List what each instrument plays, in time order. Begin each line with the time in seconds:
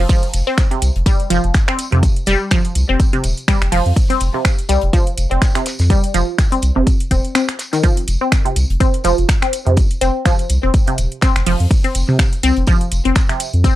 0.09 synth arpeggio sound F3, kick, closed hi-hat, tambourine
0.23 closed hi-hat
0.34 sub bass F1, closed hi-hat, tambourine
0.47 synth arpeggio sound C4
0.58 finger snap, kick, snare, closed hi-hat, tambourine
0.71 synth arpeggio sound C3, closed hi-hat
0.82 sub bass C2, closed hi-hat, tambourine
0.95 sub bass F1, closed hi-hat
1.06 synth arpeggio sound G3, kick, closed hi-hat, tambourine
1.20 closed hi-hat
1.30 sub bass F1, synth arpeggio sound F3, closed hi-hat, tambourine
1.44 sub bass F1, closed hi-hat
1.54 finger snap, kick, snare, closed hi-hat, tambourine
1.68 synth arpeggio sound C4, finger snap, snare, closed hi-hat
1.79 closed hi-hat, tambourine
1.92 sub bass F2, synth arpeggio sound C3, closed hi-hat
2.03 kick, closed hi-hat, tambourine
2.16 closed hi-hat
2.26 sub bass F1, synth arpeggio sound G3, closed hi-hat, tambourine
2.51 synth arpeggio sound F3, finger snap, kick, snare, closed hi-hat, tambourine
2.65 closed hi-hat
2.75 sub bass C2, closed hi-hat, tambourine
2.89 sub bass F1, synth arpeggio sound C4
3.00 kick, closed hi-hat, tambourine
3.13 synth arpeggio sound C3, closed hi-hat
3.24 sub bass D#1, closed hi-hat, tambourine
3.37 closed hi-hat
3.48 synth arpeggio sound G3, finger snap, kick, snare, closed hi-hat, tambourine
3.61 sub bass F1, finger snap, snare, closed hi-hat
3.72 sub bass F1, synth arpeggio sound F3, closed hi-hat, open hi-hat
3.86 sub bass F2, closed hi-hat
3.96 kick, closed hi-hat, tambourine
4.10 synth arpeggio sound C4, closed hi-hat
4.20 sub bass F1, closed hi-hat, tambourine
4.34 synth arpeggio sound C3
4.45 finger snap, kick, snare, closed hi-hat, tambourine
4.59 closed hi-hat
4.69 sub bass C2, synth arpeggio sound G3, closed hi-hat, tambourine
4.81 sub bass F1, closed hi-hat
4.93 synth arpeggio sound F3, kick, closed hi-hat, tambourine
5.07 closed hi-hat
5.17 sub bass F1, closed hi-hat, tambourine
5.31 sub bass F1, synth arpeggio sound C4, closed hi-hat
5.42 finger snap, kick, snare, closed hi-hat, tambourine
5.55 synth arpeggio sound C3, finger snap, snare, closed hi-hat
5.66 snare, closed hi-hat, tambourine
5.79 sub bass F2, snare, closed hi-hat, tambourine
5.90 synth arpeggio sound G3, kick, closed hi-hat, tambourine
6.04 closed hi-hat
6.14 sub bass F1, synth arpeggio sound F3, closed hi-hat, tambourine
6.38 finger snap, kick, snare, closed hi-hat, tambourine
6.52 synth arpeggio sound C4, closed hi-hat
6.62 sub bass C2, closed hi-hat, tambourine
6.76 sub bass F1, synth arpeggio sound C3
6.87 kick, closed hi-hat, tambourine
7.00 closed hi-hat
7.11 sub bass D#1, synth arpeggio sound C4, kick, closed hi-hat, tambourine
7.25 closed hi-hat
7.35 synth arpeggio sound C4, finger snap, snare, closed hi-hat, tambourine
7.49 finger snap, snare, closed hi-hat
7.59 snare, closed hi-hat, tambourine
7.73 synth arpeggio sound D#3, snare, closed hi-hat, tambourine
7.83 synth arpeggio sound F3, kick, closed hi-hat, tambourine
7.97 closed hi-hat
8.08 sub bass F1, closed hi-hat, tambourine
8.21 synth arpeggio sound C4
8.32 finger snap, kick, snare, closed hi-hat, tambourine
8.45 synth arpeggio sound C3, closed hi-hat
8.56 sub bass C2, closed hi-hat, tambourine
8.70 sub bass F1, closed hi-hat
8.80 synth arpeggio sound C4, kick, closed hi-hat, tambourine
8.94 closed hi-hat
9.04 sub bass F1, synth arpeggio sound F3, closed hi-hat, tambourine
9.18 sub bass F1, closed hi-hat
9.29 finger snap, kick, snare, closed hi-hat, tambourine
9.42 synth arpeggio sound C4, finger snap, snare, closed hi-hat
9.53 closed hi-hat, tambourine
9.66 sub bass F2, synth arpeggio sound C3, closed hi-hat
9.77 kick, closed hi-hat, tambourine
9.91 closed hi-hat
10.01 sub bass F1, synth arpeggio sound C4, closed hi-hat, tambourine
10.25 synth arpeggio sound F3, finger snap, kick, snare, closed hi-hat, tambourine
10.39 closed hi-hat
10.49 sub bass C2, closed hi-hat, tambourine
10.63 sub bass F1, synth arpeggio sound C4
10.74 kick, closed hi-hat, tambourine
10.87 synth arpeggio sound C3, closed hi-hat
10.98 sub bass D#1, closed hi-hat, tambourine
11.12 closed hi-hat
11.21 synth arpeggio sound C4, finger snap, kick, snare, closed hi-hat, tambourine
11.36 sub bass F1, finger snap, snare, closed hi-hat
11.46 sub bass F1, synth arpeggio sound F3, closed hi-hat, open hi-hat
11.60 sub bass F2, closed hi-hat
11.71 kick, closed hi-hat, tambourine
11.84 synth arpeggio sound C4, closed hi-hat
11.95 sub bass F1, closed hi-hat, tambourine
12.09 synth arpeggio sound C3
12.19 finger snap, kick, snare, closed hi-hat, tambourine
12.33 closed hi-hat
12.43 sub bass C2, synth arpeggio sound C4, closed hi-hat, tambourine
12.57 sub bass F1, closed hi-hat
12.67 synth arpeggio sound F3, kick, closed hi-hat, tambourine
12.81 closed hi-hat
12.92 sub bass F1, closed hi-hat, tambourine
13.05 sub bass F1, synth arpeggio sound C4, closed hi-hat
13.15 finger snap, kick, snare, closed hi-hat, tambourine
13.29 synth arpeggio sound C3, finger snap, snare, closed hi-hat
13.40 closed hi-hat, tambourine
13.54 sub bass F2, closed hi-hat
13.64 synth arpeggio sound C4, kick, closed hi-hat, tambourine